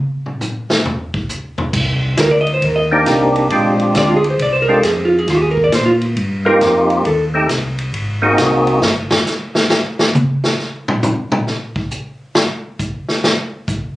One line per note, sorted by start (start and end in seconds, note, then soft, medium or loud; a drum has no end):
0.26 mid tom soft
0.41 hi-hat pedal medium
0.41 mid tom medium
0.70 snare medium
0.85 floor tom medium
1.14 kick medium
1.29 floor tom soft
1.29 hi-hat pedal medium
1.58 floor tom medium
1.73 2.16 C2 medium
1.73 kick medium
1.73 crash medium
2.17 2.60 D2 medium
2.17 2.33 A#4 medium
2.17 kick soft
2.17 snare medium
2.17 hi-hat pedal medium
2.17 ride medium
2.31 2.40 D5 medium
2.41 2.51 D#5 medium
2.47 ride soft
2.54 2.64 C5 medium
2.62 3.05 D#2 medium
2.62 2.77 A#4 medium
2.62 kick soft
2.62 ride medium
2.76 2.85 D#5 medium
2.92 3.48 A#3 medium
2.92 3.48 C4 medium
2.92 3.48 D4 medium
2.92 3.48 D#4 medium
2.92 3.48 G4 medium
3.06 3.49 C2 medium
3.06 kick soft
3.06 snare medium
3.06 hi-hat pedal soft
3.06 ride medium
3.36 ride soft
3.50 3.93 A#1 medium
3.50 4.18 G#3 medium
3.50 4.18 C4 medium
3.50 4.19 D4 soft
3.50 4.19 F4 soft
3.50 4.19 G4 medium
3.50 kick soft
3.50 ride medium
3.79 ride soft
3.94 4.38 D2 medium
3.94 4.10 D5 medium
3.94 kick soft
3.94 snare medium
3.94 hi-hat pedal soft
3.94 ride medium
4.08 4.16 F4 medium
4.17 4.27 G#4 medium
4.24 ride soft
4.30 4.38 C5 medium
4.39 4.82 C2 medium
4.39 4.55 D5 medium
4.39 kick soft
4.39 ride medium
4.53 4.62 C5 medium
4.62 4.72 A#4 medium
4.68 4.82 G#3 medium
4.68 4.82 C4 medium
4.68 4.82 D4 medium
4.68 4.82 F4 medium
4.68 4.83 G4 medium
4.74 4.82 A4 medium
4.83 5.26 F2 medium
4.83 4.98 G#4 medium
4.83 kick soft
4.83 snare medium
4.83 hi-hat pedal soft
4.83 ride medium
4.97 5.11 C4 soft
5.05 5.18 F4 medium
5.18 5.27 G#4 medium
5.27 5.71 D#2 medium
5.27 5.43 G4 medium
5.27 kick soft
5.27 snare soft
5.27 ride medium
5.42 5.51 G#4 medium
5.51 5.61 A#4 medium
5.57 kick medium
5.64 5.71 D5 medium
5.72 6.15 A#2 medium
5.72 5.88 C5 medium
5.72 kick soft
5.72 snare medium
5.72 hi-hat pedal medium
5.72 ride medium
5.85 5.94 F4 medium
6.01 ride soft
6.16 6.59 G2 medium
6.16 kick soft
6.16 ride medium
6.45 7.02 A#3 medium
6.45 7.02 C4 medium
6.45 7.02 D#4 medium
6.45 7.02 F4 medium
6.45 7.02 G4 loud
6.45 7.01 A#4 medium
6.60 7.03 F2 loud
6.60 kick soft
6.60 snare medium
6.60 hi-hat pedal medium
6.60 ride medium
6.90 ride soft
7.05 7.48 D#2 medium
7.05 7.24 A4 medium
7.05 kick soft
7.05 ride medium
7.34 7.48 A3 medium
7.34 7.48 C4 medium
7.34 7.48 D#4 medium
7.34 7.48 G4 soft
7.34 7.48 A4 medium
7.49 7.92 C2 medium
7.49 kick soft
7.49 snare medium
7.49 hi-hat pedal medium
7.49 ride medium
7.78 ride soft
7.93 8.36 G#1 medium
7.93 kick soft
7.93 ride medium
8.22 8.79 A#3 medium
8.22 8.79 C4 medium
8.22 8.79 D#4 medium
8.22 8.79 F#4 medium
8.22 8.79 G#4 medium
8.37 8.80 C2 medium
8.37 kick soft
8.37 snare medium
8.37 hi-hat pedal medium
8.37 ride medium
8.67 ride soft
8.81 9.10 G1 medium
8.81 snare loud
9.11 snare medium
9.26 snare soft
9.26 hi-hat pedal soft
9.55 snare medium
9.70 snare medium
9.99 snare medium
10.15 hi-hat pedal medium
10.15 high tom medium
10.44 snare loud
10.59 snare soft
10.88 mid tom loud
11.03 hi-hat pedal soft
11.03 mid tom medium
11.32 mid tom medium
11.47 snare soft
11.76 kick medium
11.91 hi-hat pedal medium
12.35 snare loud
12.79 kick medium
12.79 hi-hat pedal medium
13.09 snare medium
13.24 snare medium
13.68 kick medium
13.68 hi-hat pedal medium